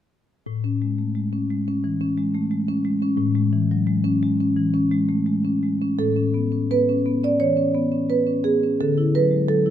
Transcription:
0.46 1.80 A2 soft
0.64 0.92 C#4 soft
0.82 1.09 G#3 soft
0.98 1.16 A3 soft
1.15 1.43 G#3 soft
1.33 1.60 C#4 soft
1.51 1.77 G#3 soft
1.68 1.94 C#4 soft
1.84 2.11 E3 soft
2.01 2.28 C#4 soft
2.17 2.45 G#3 soft
2.35 2.52 A3 soft
2.51 2.78 G#3 soft
2.68 2.96 C#4 soft
2.85 3.12 G#3 soft
3.02 3.30 C#4 soft
3.18 4.52 A2 medium
3.35 3.63 G#3 soft
3.53 3.81 E3 soft
3.71 3.88 F#3 soft
3.87 4.15 G#3 soft
4.04 4.32 C#4 soft
4.22 4.50 G#3 soft
4.40 4.68 C#4 soft
4.57 4.85 E3 soft
4.74 5.02 C#4 soft
4.91 5.20 G#3 soft
5.09 5.27 A3 soft
5.26 5.56 G#3 soft
5.45 5.74 C#4 soft
5.63 5.93 G#3 soft
5.82 6.00 C#4 soft
5.99 7.36 A2 soft
5.99 6.67 A4 medium
6.17 6.46 C#4 soft
6.34 6.63 B3 soft
6.52 6.70 C#4 soft
6.71 6.99 B3 soft
6.71 7.21 B4 medium
6.89 7.17 C#4 soft
7.06 7.34 B3 soft
7.23 7.51 C#4 soft
7.23 7.41 D5 medium
7.40 7.68 E3 soft
7.40 8.07 C#5 medium
7.57 7.85 C#4 soft
7.75 8.03 B3 soft
7.92 8.10 C#4 soft
8.10 8.38 B3 soft
8.10 8.44 B4 medium
8.27 8.55 C#4 soft
8.44 8.73 B3 soft
8.44 8.79 G#4 medium
8.63 8.81 C#4 soft
8.81 9.70 D3 soft
8.81 9.14 A4 soft
8.98 9.26 E4 soft
9.15 9.43 F#3 soft
9.15 9.48 B4 medium
9.31 9.49 G#3 soft
9.49 9.70 F#3 soft
9.49 9.70 A4 medium
9.66 9.70 E4 soft

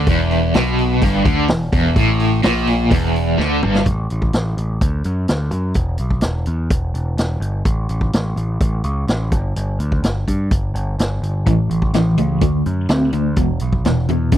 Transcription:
0.07 0.51 E1 medium
0.07 0.55 E2 loud
0.07 kick loud
0.07 open hi-hat medium
0.31 open hi-hat soft
0.54 0.99 B1 medium
0.54 1.01 B2 loud
0.54 snare loud
0.54 open hi-hat medium
0.79 open hi-hat soft
1.02 1.24 G1 medium
1.02 1.25 G2 medium
1.02 kick loud
1.02 open hi-hat medium
1.25 1.47 D2 loud
1.25 1.48 D3 loud
1.25 kick loud
1.25 open hi-hat medium
1.48 1.72 E1 medium
1.48 1.68 E2 medium
1.48 snare loud
1.48 open hi-hat medium
1.72 1.95 E1 medium
1.72 1.96 E2 medium
1.72 kick loud
1.72 open hi-hat medium
1.96 2.40 A1 medium
1.96 2.43 A2 loud
1.96 kick loud
1.96 open hi-hat medium
2.20 open hi-hat medium
2.43 2.88 A#1 medium
2.43 2.90 A#2 loud
2.43 snare loud
2.43 open hi-hat medium
2.67 snare soft
2.67 open hi-hat medium
2.90 3.35 E1 medium
2.90 3.37 E2 medium
2.90 kick loud
2.90 open hi-hat medium
3.16 open hi-hat medium
3.38 3.60 D2 medium
3.38 3.61 D3 loud
3.38 snare medium
3.63 3.85 G1 medium
3.63 3.85 G2 medium
3.63 mid tom medium
3.75 snare medium
3.86 4.06 A1 medium
3.86 kick loud
3.86 closed hi-hat medium
4.10 4.31 A1 medium
4.10 closed hi-hat soft
4.22 kick medium
4.33 4.54 A1 medium
4.33 snare medium
4.33 closed hi-hat medium
4.57 4.78 A1 medium
4.57 closed hi-hat medium
4.81 5.01 D2 medium
4.81 kick loud
4.81 closed hi-hat medium
5.04 5.25 F#2 medium
5.04 closed hi-hat medium
5.28 5.50 D2 medium
5.28 snare loud
5.28 closed hi-hat medium
5.51 5.73 F#2 medium
5.51 closed hi-hat medium
5.74 5.96 E1 medium
5.74 kick medium
5.74 closed hi-hat medium
5.98 6.20 B1 medium
5.98 closed hi-hat medium
6.11 kick medium
6.21 6.44 E1 medium
6.21 snare loud
6.21 closed hi-hat medium
6.46 6.68 E2 medium
6.46 closed hi-hat medium
6.70 6.91 E1 medium
6.70 kick loud
6.70 closed hi-hat medium
6.94 7.15 E1 medium
6.94 closed hi-hat medium
7.17 7.38 E1 medium
7.17 snare medium
7.17 closed hi-hat medium
7.40 7.62 G1 medium
7.40 closed hi-hat medium
7.65 7.86 A1 medium
7.65 kick loud
7.65 closed hi-hat medium
7.89 8.10 A1 medium
7.89 closed hi-hat medium
8.01 kick medium
8.13 8.34 A1 medium
8.13 snare loud
8.13 closed hi-hat medium
8.36 8.57 A1 medium
8.36 closed hi-hat soft
8.61 8.81 A1 medium
8.61 kick loud
8.61 closed hi-hat medium
8.84 9.05 C#2 medium
8.84 closed hi-hat medium
9.07 9.33 A1 medium
9.07 snare loud
9.07 closed hi-hat medium
9.32 9.53 G1 medium
9.32 kick medium
9.32 closed hi-hat medium
9.56 9.77 G1 medium
9.56 closed hi-hat medium
9.79 10.00 D2 medium
9.79 closed hi-hat medium
9.92 kick medium
10.02 10.24 G1 medium
10.02 snare loud
10.02 closed hi-hat medium
10.28 10.48 G2 medium
10.28 kick medium
10.28 closed hi-hat medium
10.51 10.72 G1 medium
10.51 kick loud
10.51 closed hi-hat medium
10.74 10.95 G1 medium
10.74 closed hi-hat medium
10.99 11.19 G1 medium
10.99 snare medium
10.99 closed hi-hat medium
11.22 11.47 G1 medium
11.22 closed hi-hat medium
11.46 11.67 A1 medium
11.46 11.89 A2 medium
11.46 11.90 E3 medium
11.46 kick loud
11.46 closed hi-hat medium
11.70 11.91 A1 medium
11.70 closed hi-hat medium
11.82 kick medium
11.94 12.15 A1 medium
11.94 12.16 A2 medium
11.94 12.16 E3 medium
11.94 snare loud
11.94 closed hi-hat medium
12.18 12.41 C#2 medium
12.18 12.40 A2 medium
12.18 12.39 E3 medium
12.18 closed hi-hat medium
12.41 12.62 D2 medium
12.41 12.85 D3 medium
12.41 12.85 A3 medium
12.41 kick loud
12.41 closed hi-hat medium
12.66 12.87 F#2 medium
12.66 closed hi-hat medium
12.89 13.10 D2 medium
12.89 13.11 D3 medium
12.89 13.11 C4 medium
12.89 snare loud
12.89 closed hi-hat medium
13.13 13.34 D2 medium
13.13 13.35 D3 medium
13.13 13.35 A3 medium
13.13 closed hi-hat medium
13.36 13.58 E1 medium
13.36 13.80 E2 medium
13.36 13.81 B2 medium
13.36 kick loud
13.36 closed hi-hat medium
13.60 13.82 B1 medium
13.60 closed hi-hat medium
13.73 kick medium
13.85 14.06 E1 medium
13.85 14.07 E2 medium
13.85 14.07 B2 medium
13.85 snare loud
13.85 closed hi-hat medium
14.09 14.30 E2 medium
14.09 14.31 E2 medium
14.09 14.31 B2 medium
14.09 closed hi-hat medium
14.32 14.38 E1 medium
14.32 14.38 E2 medium
14.32 14.38 C#3 medium
14.32 kick loud
14.32 closed hi-hat medium

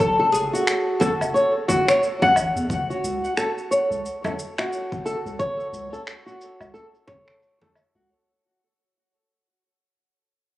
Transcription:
0.00 0.16 B1 loud
0.00 0.32 A4 loud
0.00 0.18 C#5 medium
0.00 kick loud
0.00 shaker soft
0.19 0.27 A4 medium
0.32 0.49 F#1 loud
0.32 0.96 G#4 loud
0.32 shaker medium
0.53 0.99 F#4 medium
0.53 shaker soft
0.67 finger snap medium
0.67 shaker soft
1.00 1.98 F#4 medium
1.00 1.12 A4 loud
1.00 kick medium
1.00 frame drum medium
1.00 shaker medium
1.21 1.32 F#1 medium
1.21 low woodblock medium
1.21 shaker soft
1.34 1.52 C#5 medium
1.34 shaker soft
1.68 1.86 F#4 loud
1.68 kick loud
1.68 frame drum medium
1.68 shaker medium
1.88 2.01 C#5 loud
1.88 finger snap medium
1.88 shaker soft
2.03 shaker soft
2.22 2.35 F#5 loud
2.22 frame drum medium
2.36 2.52 A1 loud
2.36 low woodblock medium
2.36 shaker medium
2.56 2.67 E2 loud
2.56 shaker soft
2.70 2.85 F#1 loud
2.70 kick loud
2.70 shaker soft
2.90 3.36 F#4 medium
2.90 shaker soft
3.04 3.19 C#2 loud
3.04 shaker medium
3.25 shaker soft
3.37 3.48 A4 medium
3.37 finger snap medium
3.37 shaker soft
3.58 shaker soft
3.71 4.23 C#5 medium
3.71 shaker medium
3.91 4.01 C#2 medium
3.91 shaker soft
4.06 shaker soft
4.24 4.32 A4 medium
4.24 frame drum medium
4.24 low woodblock medium
4.24 shaker soft
4.39 shaker medium
4.58 5.04 F#4 medium
4.58 finger snap medium
4.58 low woodblock medium
4.58 shaker soft
4.73 shaker soft
4.92 kick loud
4.92 shaker soft
5.06 5.17 A4 loud
5.06 shaker medium
5.25 5.36 C#2 medium
5.25 shaker soft
5.39 5.55 F#1 loud
5.39 5.91 C#5 medium
5.39 kick loud
5.39 shaker soft
5.60 shaker soft
5.73 5.88 C#2 loud
5.73 shaker medium
5.93 6.01 A4 medium
5.93 shaker soft
6.07 finger snap medium
6.07 shaker soft
6.26 6.72 F#4 medium
6.26 shaker soft
6.41 shaker medium
6.60 6.71 C#2 medium
6.60 low woodblock medium
6.60 shaker soft
6.74 6.85 A4 medium
6.74 shaker soft
6.95 shaker soft
7.07 7.59 C#5 medium
7.07 kick medium
7.07 frame drum medium
7.07 shaker medium
7.28 finger snap medium
7.28 shaker soft
7.43 shaker soft
7.61 7.69 A4 medium
7.61 frame drum medium
7.61 shaker soft
7.75 low woodblock medium
7.75 shaker medium
7.95 8.06 C#2 medium
7.95 8.09 F#4 medium

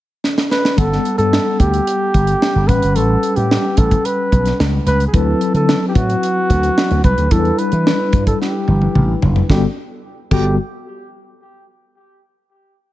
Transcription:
0.24 snare medium
0.38 snare medium
0.51 0.80 B4 medium
0.51 snare medium
0.65 snare medium
0.76 0.97 G1 medium
0.76 2.64 G3 medium
0.76 2.65 B3 soft
0.76 1.18 A4 loud
0.76 2.65 A4 medium
0.76 2.65 F#5 soft
0.76 kick loud
0.76 closed hi-hat medium
0.93 snare soft
1.05 closed hi-hat medium
1.18 1.37 G2 medium
1.18 1.61 A4 medium
1.18 closed hi-hat soft
1.33 snare loud
1.60 1.79 D2 medium
1.60 2.69 G4 medium
1.60 kick medium
1.60 closed hi-hat medium
1.74 closed hi-hat soft
1.87 closed hi-hat medium
2.14 2.33 G1 medium
2.14 kick medium
2.14 closed hi-hat medium
2.27 closed hi-hat medium
2.42 snare medium
2.55 2.69 G1 medium
2.68 2.78 A1 medium
2.68 4.82 G3 soft
2.68 4.83 C#4 soft
2.68 2.98 B4 medium
2.68 4.84 B4 medium
2.68 4.83 F#5 soft
2.68 kick medium
2.68 closed hi-hat medium
2.82 2.96 G1 medium
2.82 closed hi-hat medium
2.96 3.15 A1 medium
2.96 3.38 A4 medium
2.96 closed hi-hat medium
3.23 closed hi-hat medium
3.36 3.56 A2 medium
3.36 3.80 G4 medium
3.36 closed hi-hat soft
3.51 snare loud
3.77 3.96 A1 medium
3.77 4.07 A4 medium
3.77 kick medium
3.77 closed hi-hat medium
3.91 kick medium
3.91 closed hi-hat soft
4.05 4.60 B4 medium
4.05 closed hi-hat medium
4.32 4.51 B1 medium
4.32 kick medium
4.32 closed hi-hat medium
4.45 snare soft
4.45 closed hi-hat soft
4.60 4.78 C#2 medium
4.60 snare loud
4.86 5.05 C#2 medium
4.86 5.06 B4 loud
4.86 closed hi-hat medium
5.00 closed hi-hat soft
5.07 5.16 G#4 medium
5.12 5.33 D2 medium
5.12 7.27 F#3 medium
5.12 7.27 C4 soft
5.12 7.28 E4 medium
5.12 5.55 A4 loud
5.12 7.28 B4 medium
5.12 kick loud
5.12 closed hi-hat medium
5.41 closed hi-hat medium
5.54 5.73 D3 medium
5.54 5.86 A4 medium
5.54 closed hi-hat soft
5.69 snare loud
5.88 5.97 G4 medium
5.95 6.14 A2 medium
5.95 7.04 F#4 loud
5.95 kick medium
5.95 closed hi-hat medium
6.10 closed hi-hat soft
6.23 closed hi-hat medium
6.50 6.69 D2 medium
6.50 kick medium
6.50 closed hi-hat medium
6.63 closed hi-hat soft
6.78 snare loud
6.91 7.00 D2 medium
6.91 closed hi-hat soft
7.04 7.14 C2 medium
7.04 7.34 B4 medium
7.04 kick medium
7.04 closed hi-hat medium
7.18 7.27 D2 medium
7.18 closed hi-hat medium
7.30 7.50 E2 loud
7.30 9.45 G3 medium
7.30 9.45 D4 medium
7.30 9.45 E4 medium
7.30 7.60 A4 medium
7.30 7.39 A4 medium
7.30 kick loud
7.30 closed hi-hat medium
7.39 9.49 B4 medium
7.45 closed hi-hat soft
7.58 8.26 B4 medium
7.58 closed hi-hat medium
7.72 7.91 E3 medium
7.72 closed hi-hat soft
7.87 snare loud
8.13 8.32 G2 medium
8.13 kick loud
8.13 closed hi-hat medium
8.27 8.40 A4 medium
8.27 kick medium
8.27 closed hi-hat soft
8.41 9.18 G4 medium
8.41 snare medium
8.68 8.87 G1 medium
8.68 high tom medium
8.82 high tom soft
8.95 9.14 A1 medium
8.95 mid tom medium
9.22 9.41 F#1 medium
9.22 floor tom medium
9.36 floor tom medium
9.50 9.65 G1 medium
9.50 9.65 G3 medium
9.50 9.65 B3 medium
9.50 9.65 F#4 medium
9.50 9.65 G4 medium
9.50 9.65 A4 medium
9.50 kick medium
9.50 snare medium
10.31 10.56 G1 medium
10.31 10.56 G3 medium
10.31 10.56 B3 medium
10.31 10.56 F#4 medium
10.31 10.57 G4 medium
10.31 10.56 A4 medium
10.31 kick loud
10.31 crash medium

